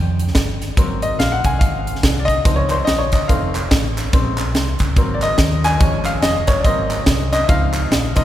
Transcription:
Already playing: fingered electric bass F2
0.19 closed hi-hat
0.27 snare
0.35 fingered electric bass G1, kick, snare, closed hi-hat
0.61 snare, closed hi-hat
0.77 fingered electric bass G#1, grand piano F#3 A#3 C4, kick, closed hi-hat
1.02 grand piano D#5, closed hi-hat
1.18 fingered electric bass A#1, grand piano F5, snare, closed hi-hat
1.32 grand piano F#5
1.44 fingered electric bass C2, grand piano G#5, kick, closed hi-hat
1.59 fingered electric bass G#1, grand piano F5, kick, closed hi-hat
1.87 closed hi-hat
1.95 snare
2.03 fingered electric bass C2, kick, snare, closed hi-hat
2.19 grand piano D5
2.25 grand piano D#5, kick
2.29 closed hi-hat
2.44 fingered electric bass C#2, grand piano D#3 F3 C4, kick, closed hi-hat
2.56 grand piano C#5
2.70 grand piano C5 C#5, clap, closed hi-hat
2.85 fingered electric bass A#1, grand piano D#5, snare, closed hi-hat
2.98 grand piano C#5
3.12 fingered electric bass G#1, grand piano D#5, kick, clap, closed hi-hat
3.28 fingered electric bass F1, grand piano D#3 A3 C4 F5, kick, closed hi-hat
3.55 clap, closed hi-hat
3.71 fingered electric bass A1, kick, snare, closed hi-hat
3.97 snare, clap, closed hi-hat
4.13 fingered electric bass A#1, grand piano C#3 G#3 C4, kick, closed hi-hat
4.38 clap, closed hi-hat
4.54 fingered electric bass C2, snare, closed hi-hat
4.79 fingered electric bass C#2, kick, clap, closed hi-hat
4.96 fingered electric bass G#1, grand piano F#3 A#3 C4, kick, closed hi-hat
5.14 grand piano D5
5.21 grand piano D#5, clap, closed hi-hat
5.38 fingered electric bass D#2, kick, snare, closed hi-hat
5.64 grand piano G#5, snare, clap, closed hi-hat
5.80 fingered electric bass G#1, grand piano F3 G#3 C#4, kick, closed hi-hat
6.05 grand piano F5, clap, closed hi-hat
6.22 fingered electric bass F1, grand piano D#5, snare, closed hi-hat
6.47 fingered electric bass F#1, grand piano C#5, kick, clap, closed hi-hat
6.60 grand piano D5
6.64 fingered electric bass G#1, grand piano F#3 A#3 C4 D#5, kick, closed hi-hat
6.90 clap, closed hi-hat
7.06 fingered electric bass C2, kick, snare, closed hi-hat
7.32 grand piano D#5, snare, clap, closed hi-hat
7.43 grand piano E5
7.48 fingered electric bass C#2, grand piano F3 C4 D#4 F5, kick, closed hi-hat
7.74 clap, closed hi-hat
7.91 fingered electric bass A#1, snare, closed hi-hat
8.16 fingered electric bass C2, grand piano F3 C4 D#4 D#5, kick, clap, closed hi-hat

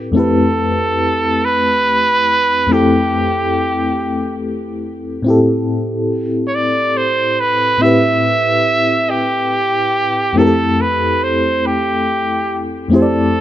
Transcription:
Already playing: fm electric piano C4 E4 G4 B4
0.12 fm electric piano F2 A3 C4
0.16 fm electric piano E4 G4 B4, trumpet A4
1.45 trumpet B4
2.67 fm electric piano F2 A3 C4
2.72 fm electric piano E4 G4 A4, trumpet G4
5.22 fm electric piano A2 C4 E4
5.28 fm electric piano G4 A4
6.47 trumpet C#5
6.55 trumpet D5
6.97 trumpet C5
7.40 trumpet B4
7.78 fm electric piano A2 C4 E4
7.82 fm electric piano G4 B4, trumpet E5
9.10 trumpet G4
10.33 fm electric piano F2 A3 C4
10.37 fm electric piano E4 G4 A#4, trumpet A4
10.47 fm electric piano A4
10.81 trumpet B4
11.24 trumpet C5
11.66 trumpet G4
12.88 fm electric piano F2 A3 C4
12.93 fm electric piano E4 G4 C5, trumpet A4
13.02 fm electric piano D5

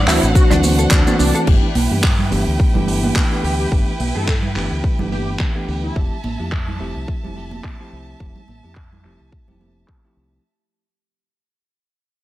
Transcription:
Already playing: violin section D4 C5 F#5
0.07 fingered electric bass D2, tine electric piano E3 A3 C4 D4 F#4, clean electric guitar C4, analog synth lead E4, clap, open hi-hat, shaker
0.23 fingered electric bass A1, closed hi-hat, shaker
0.35 analog synth lead F#4, kick, closed hi-hat, shaker
0.50 fingered electric bass D2, tine electric piano E3 A3 C4 D4 F#4, clean electric guitar D4, cross-stick, closed hi-hat, low conga, shaker
0.63 tine electric piano E3 A3 C4 D4 F#4, open hi-hat, high conga, shaker
0.78 clean electric guitar A4, closed hi-hat, shaker
0.91 fingered electric bass D2, clean electric guitar D4, kick, clap, closed hi-hat, shaker
1.07 tine electric piano E3 A3 C4 D4 F#4, clean electric guitar D4, closed hi-hat, high conga, shaker
1.19 fingered electric bass C2, analog synth lead D4, open hi-hat, shaker
1.35 clean electric guitar A4, closed hi-hat, shaker
1.47 fingered electric bass G1, tine electric piano E3 A3 B3 D4 G4, violin section E4 B4 G5, kick, crash
1.75 fingered electric bass B1, open hi-hat, high conga
1.91 fingered electric bass G2, tine electric piano E3 A3 B3 D4 G4
2.04 kick, clap
2.19 low conga
2.31 fingered electric bass G1, tine electric piano E3 A3 B3 D4 G4, open hi-hat
2.47 fingered electric bass D2
2.60 kick
2.74 fingered electric bass G1, tine electric piano E3 A3 B3 D4 G4, low conga
2.87 tine electric piano E3 A3 B3 D4 G4, open hi-hat
3.03 high conga
3.16 kick, clap
3.31 tine electric piano E3 A3 B3 D4 G4
3.43 fingered electric bass D2, analog synth lead G4, open hi-hat
3.59 analog synth lead G4
3.72 fingered electric bass G1, tine electric piano E3 A3 B3 D4 G4, kick
4.00 fingered electric bass B1, open hi-hat, high conga
4.15 fingered electric bass G2, tine electric piano E3 A3 B3 D4 G4, analog synth lead A4
4.28 kick, clap
4.43 low conga
4.55 fingered electric bass G1, tine electric piano E3 A3 B3 D4 G4, clap, open hi-hat
4.71 fingered electric bass D2
4.84 kick
4.99 fingered electric bass G1, tine electric piano E3 A3 B3 D4 G4, low conga
5.11 tine electric piano E3 A3 B3 D4 G4, analog synth lead G4, open hi-hat, high conga
5.39 kick, clap
5.55 tine electric piano E3 A3 B3 D4 G4
5.68 fingered electric bass D2, open hi-hat
5.83 analog synth lead E4
5.96 fingered electric bass F1, tine electric piano F3 A3 C4 E4 G4, violin section E5 A5, kick
6.23 fingered electric bass A1, open hi-hat, high conga
6.39 fingered electric bass F2, tine electric piano F3 A3 C4 E4 G4
6.52 kick, clap
6.68 low conga
6.80 fingered electric bass F1, tine electric piano F3 A3 C4 E4 G4, open hi-hat
6.96 fingered electric bass C2
7.08 kick
7.23 fingered electric bass F1, tine electric piano F3 A3 C4 E4 G4, low conga
7.36 tine electric piano F3 A3 C4 E4 G4, open hi-hat
7.51 high conga
7.64 kick, clap
7.79 tine electric piano F3 A3 C4 E4 G4
7.92 fingered electric bass C2, open hi-hat
8.20 fingered electric bass F1, tine electric piano F3 A3 C4 E4 G4, kick
8.36 low conga
8.48 fingered electric bass A1, open hi-hat, high conga
8.63 fingered electric bass F2, tine electric piano F3 A3 C4 E4 G4
8.75 kick, clap
8.93 low conga
9.04 fingered electric bass F1, tine electric piano F3 A3 C4 E4 G4, clap, open hi-hat
9.20 fingered electric bass C2
9.32 kick
9.48 fingered electric bass F1, tine electric piano F3 A3 C4 E4 G4, low conga
9.60 tine electric piano F3 A3 C4 E4 G4, open hi-hat, high conga
9.88 kick, clap
10.04 tine electric piano F3 A3 C4 E4 G4
10.16 fingered electric bass C2, open hi-hat

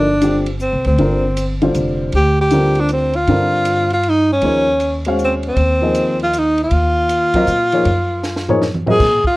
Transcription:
Already playing: upright bass G1, tenor saxophone D4
0.22 grand piano D3 G3 C4 F4 G4, hi-hat pedal, ride
0.47 ride
0.60 tenor saxophone C4, hi-hat pedal
0.73 upright bass C2
0.85 upright bass D2, tenor saxophone C4, ride
0.98 upright bass G1, grand piano D3 G3 C4 F4 A#4, ride
1.37 hi-hat pedal, ride
1.62 grand piano D3 G3 C4 F4 C5, ride
1.74 upright bass F1, hi-hat pedal, ride
2.12 upright bass D2, tenor saxophone G4, ride
2.41 tenor saxophone G4
2.51 grand piano D3 G3 C4 F4 A#4, hi-hat pedal, ride
2.75 ride
2.80 tenor saxophone D4
2.88 hi-hat pedal, ride
2.93 tenor saxophone C4
3.13 tenor saxophone F4, ride
3.27 upright bass G2, grand piano D3 G3 C4 F4 A#4, ride
3.65 hi-hat pedal, ride
3.90 tenor saxophone F4, ride
4.03 ride
4.09 tenor saxophone D#4
4.33 tenor saxophone C#4
4.42 upright bass D#2, grand piano F3 A#3 D#4 G#4 C#5, ride
4.80 hi-hat pedal, ride
5.05 grand piano G#3 C#4 F#4 C5 F5, ride
5.18 hi-hat pedal
5.25 tenor saxophone C4
5.43 ride
5.48 tenor saxophone C4
5.56 upright bass D#2, ride
5.82 grand piano F3 A#3 D#4 G#4 D#5
5.94 hi-hat pedal, ride
6.19 ride
6.23 tenor saxophone F4
6.33 hi-hat pedal, ride
6.38 tenor saxophone D#4
6.58 ride
6.64 tenor saxophone F4
6.71 upright bass D#2, ride
7.09 hi-hat pedal, ride
7.34 grand piano F#3 C4 F4 A#4 D#5, kick, ride
7.47 upright bass A#2, hi-hat pedal
7.72 grand piano F3 A#3 D#4 G#4 C#5, ride
7.85 upright bass F#2, ride
8.23 snare, hi-hat pedal
8.36 snare
8.48 grand piano F3 A#3 D#4 G#4 C#5, floor tom
8.61 snare
8.74 mid tom
8.86 grand piano F#3 C4 F4 A#4 D#5, tenor saxophone G#4, floor tom
8.99 upright bass A#2, kick, snare, crash
9.24 tenor saxophone F4, muted upright bass stroke, kick

